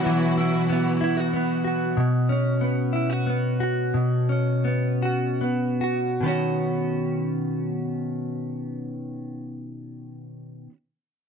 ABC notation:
X:1
M:6/8
L:1/16
Q:3/8=53
K:B
V:1 name="Clean electric guitar"
[E,B,EF]2 E2 B,2 E F B,2 F2 | B,,2 C2 B,2 E F B,2 F2 | B,,2 C2 B,2 F2 B,2 F2 | [B,,D,B,CF]12- |
[B,,D,B,CF]12 |]
V:2 name="String section" clef=bass
[B,,E,F,EF]12 | z12 | z12 | z12 |
z12 |]